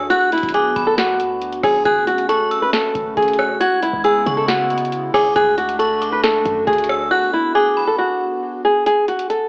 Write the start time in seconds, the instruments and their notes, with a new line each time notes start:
Already playing: analog synth pad F#4
0.10 analog synth pad B3 D4, nylon-string guitar F#4, synth bell F#6, closed hi-hat
0.32 nylon-string guitar E4, closed hi-hat
0.38 closed hi-hat
0.43 808-style bass B1, kick, closed hi-hat
0.49 closed hi-hat
0.54 nylon-string guitar G#4, synth bell D6, closed hi-hat
0.76 808-style bass B1, synth bell B5, kick, closed hi-hat
0.87 nylon-string guitar A4
0.98 nylon-string guitar F#4, snare, closed hi-hat
1.20 808-style bass D2, closed hi-hat
1.42 closed hi-hat
1.53 closed hi-hat
1.64 808-style bass B1, nylon-string guitar G#4, kick, cross-stick, open hi-hat
1.85 808-style bass F#1, analog synth pad A3 C#4, nylon-string guitar G#4, synth bell F#6, kick, closed hi-hat
2.07 nylon-string guitar F#4, closed hi-hat
2.18 closed hi-hat
2.29 nylon-string guitar A4, synth bell C#6, closed hi-hat
2.51 synth bell E6, closed hi-hat
2.62 nylon-string guitar B4
2.73 nylon-string guitar A4, snare, closed hi-hat
2.95 808-style bass F#1, kick, closed hi-hat
3.17 808-style bass F#1, nylon-string guitar G#4, kick, closed hi-hat
3.22 closed hi-hat
3.28 closed hi-hat
3.33 closed hi-hat
3.39 synth bell F#6, cross-stick
3.61 analog synth pad C#3 G#3 B3 E4, nylon-string guitar F#4, synth bell G#6, closed hi-hat
3.83 nylon-string guitar E4, closed hi-hat
3.94 808-style bass C#2, kick
4.04 nylon-string guitar G#4, synth bell E6, closed hi-hat
4.26 808-style bass C#3, synth bell C#6, kick, closed hi-hat
4.37 nylon-string guitar A4
4.48 nylon-string guitar F#4, snare, closed hi-hat
4.70 closed hi-hat
4.78 closed hi-hat
4.85 closed hi-hat
4.92 closed hi-hat
5.14 808-style bass C#2, nylon-string guitar G#4, synth bell D6, kick, cross-stick, open hi-hat
5.36 808-style bass D2, analog synth pad D3 A3 D4 F#4, nylon-string guitar G#4, synth bell F#6, kick, closed hi-hat
5.58 nylon-string guitar F#4, closed hi-hat
5.69 closed hi-hat
5.79 nylon-string guitar A4, synth bell C#6, closed hi-hat
6.02 synth bell D6, closed hi-hat
6.12 nylon-string guitar B4
6.23 nylon-string guitar A4, snare, closed hi-hat
6.45 808-style bass F#2, kick, closed hi-hat
6.67 808-style bass D2, nylon-string guitar G#4, kick, closed hi-hat
6.73 closed hi-hat
6.78 closed hi-hat
6.84 closed hi-hat
6.89 synth bell E6, cross-stick
7.11 analog synth pad B3, nylon-string guitar F#4, synth bell F#6
7.33 nylon-string guitar E4
7.55 nylon-string guitar G#4, synth bell D6
7.77 synth bell B5
7.87 nylon-string guitar A4
7.98 nylon-string guitar F#4
8.65 nylon-string guitar G#4
8.86 nylon-string guitar G#4, closed hi-hat
9.08 nylon-string guitar F#4, closed hi-hat
9.19 closed hi-hat
9.30 nylon-string guitar A4, closed hi-hat